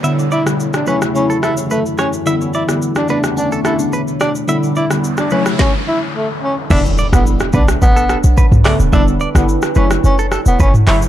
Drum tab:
CC |----------------|----------------|----------------|x---------------|
HH |----------------|----------------|----------------|--------------o-|
SH |xxxxxxxxxxxxxxxx|xxxxxxxxxxxxxxxx|xxxxxxxx--------|xxxxxxxxxxxxxxxx|
CP |----------------|----------------|----------------|--------------x-|
SD |---r-r-r--r---r-|---r-r-r--r---r-|---r-r-ro-------|---r-r-r--r---r-|
T2 |----------------|----------------|----------------|-------------o--|
BD |----------------|----------------|--------o-------|o--o--o-o---o---|

CC |----------------|
HH |--------------o-|
SH |xxxxxxxxxxxxxxxx|
CP |--------------x-|
SD |---r-r-r--r---r-|
T2 |-------------o--|
BD |o--o--------o---|